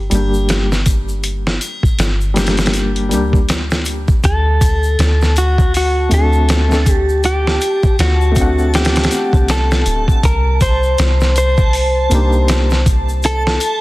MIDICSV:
0, 0, Header, 1, 6, 480
1, 0, Start_track
1, 0, Key_signature, -2, "minor"
1, 0, Tempo, 750000
1, 793, Time_signature, 4, 2, 24, 8
1, 8838, End_track
2, 0, Start_track
2, 0, Title_t, "Synth texture"
2, 0, Program_c, 0, 99
2, 2715, Note_on_c, 0, 81, 79
2, 8838, Note_off_c, 0, 81, 0
2, 8838, End_track
3, 0, Start_track
3, 0, Title_t, "Clean electric guitar"
3, 0, Program_c, 1, 27
3, 2720, Note_on_c, 1, 69, 89
3, 3441, Note_off_c, 1, 69, 0
3, 3443, Note_on_c, 1, 66, 81
3, 3662, Note_off_c, 1, 66, 0
3, 3691, Note_on_c, 1, 66, 80
3, 3906, Note_off_c, 1, 66, 0
3, 3928, Note_on_c, 1, 69, 93
3, 4434, Note_off_c, 1, 69, 0
3, 4434, Note_on_c, 1, 67, 93
3, 4640, Note_off_c, 1, 67, 0
3, 4642, Note_on_c, 1, 67, 99
3, 5092, Note_off_c, 1, 67, 0
3, 5125, Note_on_c, 1, 66, 90
3, 5600, Note_off_c, 1, 66, 0
3, 5603, Note_on_c, 1, 67, 89
3, 6083, Note_off_c, 1, 67, 0
3, 6086, Note_on_c, 1, 69, 94
3, 6435, Note_off_c, 1, 69, 0
3, 6561, Note_on_c, 1, 70, 109
3, 6794, Note_off_c, 1, 70, 0
3, 6796, Note_on_c, 1, 72, 110
3, 7275, Note_off_c, 1, 72, 0
3, 7282, Note_on_c, 1, 72, 99
3, 8212, Note_off_c, 1, 72, 0
3, 8484, Note_on_c, 1, 69, 110
3, 8838, Note_off_c, 1, 69, 0
3, 8838, End_track
4, 0, Start_track
4, 0, Title_t, "Felt piano"
4, 0, Program_c, 2, 0
4, 0, Note_on_c, 2, 67, 95
4, 62, Note_on_c, 2, 55, 72
4, 66, Note_off_c, 2, 67, 0
4, 72, Note_on_c, 2, 58, 62
4, 83, Note_on_c, 2, 62, 60
4, 93, Note_on_c, 2, 67, 81
4, 415, Note_off_c, 2, 55, 0
4, 420, Note_off_c, 2, 58, 0
4, 425, Note_off_c, 2, 62, 0
4, 430, Note_off_c, 2, 67, 0
4, 1497, Note_on_c, 2, 55, 82
4, 1508, Note_on_c, 2, 58, 81
4, 1519, Note_on_c, 2, 62, 80
4, 1527, Note_on_c, 2, 67, 95
4, 1965, Note_off_c, 2, 55, 0
4, 1971, Note_off_c, 2, 58, 0
4, 1976, Note_off_c, 2, 62, 0
4, 1977, Note_on_c, 2, 55, 81
4, 1980, Note_off_c, 2, 67, 0
4, 1985, Note_on_c, 2, 58, 72
4, 1997, Note_on_c, 2, 62, 73
4, 2006, Note_on_c, 2, 67, 88
4, 2150, Note_off_c, 2, 55, 0
4, 2155, Note_off_c, 2, 58, 0
4, 2160, Note_off_c, 2, 62, 0
4, 2165, Note_off_c, 2, 67, 0
4, 3898, Note_on_c, 2, 57, 67
4, 3908, Note_on_c, 2, 60, 62
4, 3919, Note_on_c, 2, 62, 64
4, 3929, Note_on_c, 2, 66, 73
4, 4253, Note_off_c, 2, 57, 0
4, 4258, Note_off_c, 2, 60, 0
4, 4263, Note_off_c, 2, 62, 0
4, 4268, Note_off_c, 2, 66, 0
4, 4276, Note_on_c, 2, 57, 86
4, 4284, Note_on_c, 2, 60, 82
4, 4295, Note_on_c, 2, 62, 76
4, 4306, Note_on_c, 2, 69, 96
4, 4362, Note_off_c, 2, 57, 0
4, 4366, Note_off_c, 2, 60, 0
4, 4372, Note_off_c, 2, 62, 0
4, 4377, Note_off_c, 2, 69, 0
4, 5322, Note_on_c, 2, 57, 86
4, 5343, Note_on_c, 2, 60, 81
4, 5363, Note_on_c, 2, 62, 80
4, 5383, Note_on_c, 2, 78, 101
4, 6525, Note_off_c, 2, 57, 0
4, 6536, Note_off_c, 2, 60, 0
4, 6546, Note_off_c, 2, 62, 0
4, 6556, Note_off_c, 2, 78, 0
4, 7739, Note_on_c, 2, 58, 74
4, 7750, Note_on_c, 2, 62, 66
4, 7761, Note_on_c, 2, 63, 65
4, 7770, Note_on_c, 2, 67, 81
4, 8093, Note_off_c, 2, 58, 0
4, 8099, Note_off_c, 2, 62, 0
4, 8104, Note_off_c, 2, 63, 0
4, 8109, Note_off_c, 2, 67, 0
4, 8838, End_track
5, 0, Start_track
5, 0, Title_t, "808-style bass"
5, 0, Program_c, 3, 38
5, 74, Note_on_c, 3, 31, 100
5, 1014, Note_off_c, 3, 31, 0
5, 1271, Note_on_c, 3, 31, 88
5, 1989, Note_on_c, 3, 38, 100
5, 1999, Note_off_c, 3, 31, 0
5, 2692, Note_off_c, 3, 38, 0
5, 2712, Note_on_c, 3, 38, 96
5, 3173, Note_off_c, 3, 38, 0
5, 3192, Note_on_c, 3, 38, 84
5, 3893, Note_off_c, 3, 38, 0
5, 3915, Note_on_c, 3, 38, 104
5, 4855, Note_off_c, 3, 38, 0
5, 5113, Note_on_c, 3, 38, 89
5, 5814, Note_off_c, 3, 38, 0
5, 5972, Note_on_c, 3, 36, 80
5, 6293, Note_off_c, 3, 36, 0
5, 6310, Note_on_c, 3, 26, 84
5, 6436, Note_off_c, 3, 26, 0
5, 6548, Note_on_c, 3, 36, 93
5, 7012, Note_off_c, 3, 36, 0
5, 7033, Note_on_c, 3, 36, 85
5, 7734, Note_off_c, 3, 36, 0
5, 7752, Note_on_c, 3, 36, 107
5, 8694, Note_off_c, 3, 36, 0
5, 8838, End_track
6, 0, Start_track
6, 0, Title_t, "Drums"
6, 71, Note_on_c, 9, 42, 65
6, 76, Note_on_c, 9, 82, 81
6, 79, Note_on_c, 9, 81, 73
6, 135, Note_off_c, 9, 42, 0
6, 140, Note_off_c, 9, 82, 0
6, 143, Note_off_c, 9, 81, 0
6, 216, Note_on_c, 9, 82, 38
6, 280, Note_off_c, 9, 82, 0
6, 312, Note_on_c, 9, 42, 83
6, 314, Note_on_c, 9, 82, 51
6, 320, Note_on_c, 9, 38, 100
6, 376, Note_off_c, 9, 42, 0
6, 378, Note_off_c, 9, 82, 0
6, 384, Note_off_c, 9, 38, 0
6, 460, Note_on_c, 9, 82, 38
6, 461, Note_on_c, 9, 38, 39
6, 524, Note_off_c, 9, 82, 0
6, 525, Note_off_c, 9, 38, 0
6, 549, Note_on_c, 9, 42, 63
6, 551, Note_on_c, 9, 36, 85
6, 552, Note_on_c, 9, 82, 98
6, 613, Note_off_c, 9, 42, 0
6, 615, Note_off_c, 9, 36, 0
6, 616, Note_off_c, 9, 82, 0
6, 695, Note_on_c, 9, 82, 41
6, 759, Note_off_c, 9, 82, 0
6, 791, Note_on_c, 9, 42, 80
6, 792, Note_on_c, 9, 82, 48
6, 855, Note_off_c, 9, 42, 0
6, 856, Note_off_c, 9, 82, 0
6, 939, Note_on_c, 9, 38, 49
6, 1003, Note_off_c, 9, 38, 0
6, 1030, Note_on_c, 9, 42, 59
6, 1035, Note_on_c, 9, 82, 89
6, 1036, Note_on_c, 9, 81, 77
6, 1094, Note_off_c, 9, 42, 0
6, 1099, Note_off_c, 9, 82, 0
6, 1100, Note_off_c, 9, 81, 0
6, 1172, Note_on_c, 9, 36, 84
6, 1183, Note_on_c, 9, 82, 39
6, 1236, Note_off_c, 9, 36, 0
6, 1247, Note_off_c, 9, 82, 0
6, 1271, Note_on_c, 9, 42, 83
6, 1277, Note_on_c, 9, 82, 53
6, 1278, Note_on_c, 9, 38, 109
6, 1335, Note_off_c, 9, 42, 0
6, 1341, Note_off_c, 9, 82, 0
6, 1342, Note_off_c, 9, 38, 0
6, 1414, Note_on_c, 9, 82, 35
6, 1478, Note_off_c, 9, 82, 0
6, 1510, Note_on_c, 9, 42, 65
6, 1518, Note_on_c, 9, 38, 84
6, 1518, Note_on_c, 9, 82, 80
6, 1519, Note_on_c, 9, 81, 64
6, 1574, Note_off_c, 9, 42, 0
6, 1579, Note_on_c, 9, 42, 66
6, 1582, Note_off_c, 9, 38, 0
6, 1582, Note_off_c, 9, 82, 0
6, 1583, Note_off_c, 9, 81, 0
6, 1586, Note_on_c, 9, 38, 79
6, 1643, Note_off_c, 9, 42, 0
6, 1648, Note_on_c, 9, 42, 59
6, 1650, Note_off_c, 9, 38, 0
6, 1655, Note_on_c, 9, 38, 77
6, 1655, Note_on_c, 9, 82, 36
6, 1702, Note_off_c, 9, 42, 0
6, 1702, Note_on_c, 9, 42, 63
6, 1709, Note_off_c, 9, 38, 0
6, 1709, Note_on_c, 9, 38, 84
6, 1719, Note_off_c, 9, 82, 0
6, 1750, Note_off_c, 9, 42, 0
6, 1750, Note_on_c, 9, 42, 78
6, 1756, Note_on_c, 9, 82, 49
6, 1773, Note_off_c, 9, 38, 0
6, 1814, Note_off_c, 9, 42, 0
6, 1820, Note_off_c, 9, 82, 0
6, 1894, Note_on_c, 9, 42, 41
6, 1958, Note_off_c, 9, 42, 0
6, 1991, Note_on_c, 9, 42, 63
6, 1997, Note_on_c, 9, 82, 91
6, 2055, Note_off_c, 9, 42, 0
6, 2061, Note_off_c, 9, 82, 0
6, 2131, Note_on_c, 9, 36, 92
6, 2142, Note_on_c, 9, 82, 35
6, 2195, Note_off_c, 9, 36, 0
6, 2206, Note_off_c, 9, 82, 0
6, 2231, Note_on_c, 9, 42, 79
6, 2233, Note_on_c, 9, 82, 53
6, 2238, Note_on_c, 9, 38, 101
6, 2295, Note_off_c, 9, 42, 0
6, 2297, Note_off_c, 9, 82, 0
6, 2302, Note_off_c, 9, 38, 0
6, 2371, Note_on_c, 9, 82, 34
6, 2380, Note_on_c, 9, 38, 60
6, 2435, Note_off_c, 9, 82, 0
6, 2444, Note_off_c, 9, 38, 0
6, 2466, Note_on_c, 9, 82, 95
6, 2471, Note_on_c, 9, 42, 65
6, 2530, Note_off_c, 9, 82, 0
6, 2535, Note_off_c, 9, 42, 0
6, 2611, Note_on_c, 9, 82, 35
6, 2612, Note_on_c, 9, 36, 91
6, 2675, Note_off_c, 9, 82, 0
6, 2676, Note_off_c, 9, 36, 0
6, 2710, Note_on_c, 9, 82, 44
6, 2711, Note_on_c, 9, 36, 96
6, 2713, Note_on_c, 9, 42, 86
6, 2774, Note_off_c, 9, 82, 0
6, 2775, Note_off_c, 9, 36, 0
6, 2777, Note_off_c, 9, 42, 0
6, 2951, Note_on_c, 9, 36, 83
6, 2953, Note_on_c, 9, 82, 95
6, 2955, Note_on_c, 9, 42, 62
6, 2960, Note_on_c, 9, 81, 70
6, 3015, Note_off_c, 9, 36, 0
6, 3017, Note_off_c, 9, 82, 0
6, 3019, Note_off_c, 9, 42, 0
6, 3024, Note_off_c, 9, 81, 0
6, 3092, Note_on_c, 9, 82, 38
6, 3156, Note_off_c, 9, 82, 0
6, 3193, Note_on_c, 9, 42, 80
6, 3197, Note_on_c, 9, 82, 50
6, 3201, Note_on_c, 9, 38, 104
6, 3257, Note_off_c, 9, 42, 0
6, 3261, Note_off_c, 9, 82, 0
6, 3265, Note_off_c, 9, 38, 0
6, 3336, Note_on_c, 9, 82, 32
6, 3344, Note_on_c, 9, 38, 39
6, 3400, Note_off_c, 9, 82, 0
6, 3408, Note_off_c, 9, 38, 0
6, 3430, Note_on_c, 9, 81, 61
6, 3434, Note_on_c, 9, 42, 61
6, 3434, Note_on_c, 9, 82, 91
6, 3494, Note_off_c, 9, 81, 0
6, 3498, Note_off_c, 9, 42, 0
6, 3498, Note_off_c, 9, 82, 0
6, 3573, Note_on_c, 9, 36, 93
6, 3577, Note_on_c, 9, 82, 35
6, 3637, Note_off_c, 9, 36, 0
6, 3641, Note_off_c, 9, 82, 0
6, 3675, Note_on_c, 9, 46, 71
6, 3678, Note_on_c, 9, 82, 54
6, 3739, Note_off_c, 9, 46, 0
6, 3742, Note_off_c, 9, 82, 0
6, 3910, Note_on_c, 9, 81, 64
6, 3912, Note_on_c, 9, 42, 64
6, 3916, Note_on_c, 9, 82, 83
6, 3974, Note_off_c, 9, 81, 0
6, 3976, Note_off_c, 9, 42, 0
6, 3980, Note_off_c, 9, 82, 0
6, 4049, Note_on_c, 9, 82, 38
6, 4113, Note_off_c, 9, 82, 0
6, 4152, Note_on_c, 9, 42, 80
6, 4155, Note_on_c, 9, 82, 44
6, 4159, Note_on_c, 9, 38, 108
6, 4216, Note_off_c, 9, 42, 0
6, 4219, Note_off_c, 9, 82, 0
6, 4223, Note_off_c, 9, 38, 0
6, 4296, Note_on_c, 9, 82, 36
6, 4301, Note_on_c, 9, 38, 40
6, 4360, Note_off_c, 9, 82, 0
6, 4365, Note_off_c, 9, 38, 0
6, 4391, Note_on_c, 9, 36, 89
6, 4392, Note_on_c, 9, 82, 85
6, 4393, Note_on_c, 9, 42, 60
6, 4455, Note_off_c, 9, 36, 0
6, 4456, Note_off_c, 9, 82, 0
6, 4457, Note_off_c, 9, 42, 0
6, 4537, Note_on_c, 9, 82, 37
6, 4601, Note_off_c, 9, 82, 0
6, 4629, Note_on_c, 9, 82, 46
6, 4632, Note_on_c, 9, 42, 81
6, 4693, Note_off_c, 9, 82, 0
6, 4696, Note_off_c, 9, 42, 0
6, 4783, Note_on_c, 9, 38, 49
6, 4847, Note_off_c, 9, 38, 0
6, 4872, Note_on_c, 9, 82, 81
6, 4875, Note_on_c, 9, 42, 58
6, 4878, Note_on_c, 9, 81, 64
6, 4936, Note_off_c, 9, 82, 0
6, 4939, Note_off_c, 9, 42, 0
6, 4942, Note_off_c, 9, 81, 0
6, 5012, Note_on_c, 9, 82, 33
6, 5014, Note_on_c, 9, 36, 95
6, 5076, Note_off_c, 9, 82, 0
6, 5078, Note_off_c, 9, 36, 0
6, 5114, Note_on_c, 9, 42, 82
6, 5115, Note_on_c, 9, 82, 46
6, 5122, Note_on_c, 9, 38, 109
6, 5178, Note_off_c, 9, 42, 0
6, 5179, Note_off_c, 9, 82, 0
6, 5186, Note_off_c, 9, 38, 0
6, 5255, Note_on_c, 9, 82, 33
6, 5319, Note_off_c, 9, 82, 0
6, 5348, Note_on_c, 9, 82, 85
6, 5351, Note_on_c, 9, 36, 91
6, 5352, Note_on_c, 9, 42, 63
6, 5412, Note_off_c, 9, 82, 0
6, 5415, Note_off_c, 9, 36, 0
6, 5416, Note_off_c, 9, 42, 0
6, 5495, Note_on_c, 9, 82, 37
6, 5559, Note_off_c, 9, 82, 0
6, 5592, Note_on_c, 9, 42, 62
6, 5593, Note_on_c, 9, 82, 51
6, 5599, Note_on_c, 9, 38, 82
6, 5656, Note_off_c, 9, 42, 0
6, 5657, Note_off_c, 9, 82, 0
6, 5662, Note_on_c, 9, 42, 64
6, 5663, Note_off_c, 9, 38, 0
6, 5670, Note_on_c, 9, 38, 81
6, 5726, Note_off_c, 9, 42, 0
6, 5733, Note_on_c, 9, 42, 65
6, 5734, Note_off_c, 9, 38, 0
6, 5741, Note_on_c, 9, 38, 81
6, 5782, Note_off_c, 9, 42, 0
6, 5782, Note_on_c, 9, 42, 62
6, 5790, Note_off_c, 9, 38, 0
6, 5790, Note_on_c, 9, 38, 82
6, 5830, Note_off_c, 9, 42, 0
6, 5830, Note_on_c, 9, 42, 65
6, 5834, Note_on_c, 9, 82, 80
6, 5854, Note_off_c, 9, 38, 0
6, 5894, Note_off_c, 9, 42, 0
6, 5898, Note_off_c, 9, 82, 0
6, 5971, Note_on_c, 9, 36, 94
6, 5978, Note_on_c, 9, 82, 32
6, 6035, Note_off_c, 9, 36, 0
6, 6042, Note_off_c, 9, 82, 0
6, 6070, Note_on_c, 9, 42, 86
6, 6074, Note_on_c, 9, 82, 50
6, 6078, Note_on_c, 9, 38, 102
6, 6134, Note_off_c, 9, 42, 0
6, 6138, Note_off_c, 9, 82, 0
6, 6142, Note_off_c, 9, 38, 0
6, 6214, Note_on_c, 9, 82, 31
6, 6220, Note_on_c, 9, 38, 63
6, 6278, Note_off_c, 9, 82, 0
6, 6284, Note_off_c, 9, 38, 0
6, 6310, Note_on_c, 9, 42, 63
6, 6312, Note_on_c, 9, 82, 82
6, 6374, Note_off_c, 9, 42, 0
6, 6376, Note_off_c, 9, 82, 0
6, 6451, Note_on_c, 9, 36, 93
6, 6458, Note_on_c, 9, 82, 34
6, 6515, Note_off_c, 9, 36, 0
6, 6522, Note_off_c, 9, 82, 0
6, 6550, Note_on_c, 9, 36, 101
6, 6550, Note_on_c, 9, 42, 88
6, 6554, Note_on_c, 9, 82, 49
6, 6614, Note_off_c, 9, 36, 0
6, 6614, Note_off_c, 9, 42, 0
6, 6618, Note_off_c, 9, 82, 0
6, 6788, Note_on_c, 9, 81, 78
6, 6788, Note_on_c, 9, 82, 80
6, 6789, Note_on_c, 9, 36, 86
6, 6789, Note_on_c, 9, 42, 60
6, 6852, Note_off_c, 9, 81, 0
6, 6852, Note_off_c, 9, 82, 0
6, 6853, Note_off_c, 9, 36, 0
6, 6853, Note_off_c, 9, 42, 0
6, 6931, Note_on_c, 9, 82, 33
6, 6995, Note_off_c, 9, 82, 0
6, 7029, Note_on_c, 9, 82, 51
6, 7030, Note_on_c, 9, 42, 87
6, 7037, Note_on_c, 9, 38, 112
6, 7093, Note_off_c, 9, 82, 0
6, 7094, Note_off_c, 9, 42, 0
6, 7101, Note_off_c, 9, 38, 0
6, 7171, Note_on_c, 9, 82, 32
6, 7179, Note_on_c, 9, 38, 41
6, 7235, Note_off_c, 9, 82, 0
6, 7243, Note_off_c, 9, 38, 0
6, 7268, Note_on_c, 9, 81, 65
6, 7269, Note_on_c, 9, 42, 64
6, 7275, Note_on_c, 9, 82, 82
6, 7332, Note_off_c, 9, 81, 0
6, 7333, Note_off_c, 9, 42, 0
6, 7339, Note_off_c, 9, 82, 0
6, 7407, Note_on_c, 9, 82, 36
6, 7410, Note_on_c, 9, 36, 92
6, 7471, Note_off_c, 9, 82, 0
6, 7474, Note_off_c, 9, 36, 0
6, 7509, Note_on_c, 9, 46, 76
6, 7516, Note_on_c, 9, 82, 50
6, 7573, Note_off_c, 9, 46, 0
6, 7580, Note_off_c, 9, 82, 0
6, 7750, Note_on_c, 9, 81, 70
6, 7751, Note_on_c, 9, 82, 81
6, 7752, Note_on_c, 9, 42, 66
6, 7814, Note_off_c, 9, 81, 0
6, 7815, Note_off_c, 9, 82, 0
6, 7816, Note_off_c, 9, 42, 0
6, 7887, Note_on_c, 9, 82, 37
6, 7951, Note_off_c, 9, 82, 0
6, 7989, Note_on_c, 9, 42, 84
6, 7991, Note_on_c, 9, 82, 49
6, 7997, Note_on_c, 9, 38, 113
6, 8053, Note_off_c, 9, 42, 0
6, 8055, Note_off_c, 9, 82, 0
6, 8061, Note_off_c, 9, 38, 0
6, 8128, Note_on_c, 9, 82, 33
6, 8140, Note_on_c, 9, 38, 41
6, 8192, Note_off_c, 9, 82, 0
6, 8204, Note_off_c, 9, 38, 0
6, 8230, Note_on_c, 9, 36, 97
6, 8232, Note_on_c, 9, 42, 63
6, 8233, Note_on_c, 9, 82, 79
6, 8294, Note_off_c, 9, 36, 0
6, 8296, Note_off_c, 9, 42, 0
6, 8297, Note_off_c, 9, 82, 0
6, 8376, Note_on_c, 9, 82, 38
6, 8440, Note_off_c, 9, 82, 0
6, 8466, Note_on_c, 9, 82, 45
6, 8473, Note_on_c, 9, 42, 78
6, 8530, Note_off_c, 9, 82, 0
6, 8537, Note_off_c, 9, 42, 0
6, 8620, Note_on_c, 9, 38, 51
6, 8684, Note_off_c, 9, 38, 0
6, 8706, Note_on_c, 9, 81, 72
6, 8710, Note_on_c, 9, 42, 60
6, 8711, Note_on_c, 9, 82, 78
6, 8770, Note_off_c, 9, 81, 0
6, 8774, Note_off_c, 9, 42, 0
6, 8775, Note_off_c, 9, 82, 0
6, 8838, End_track
0, 0, End_of_file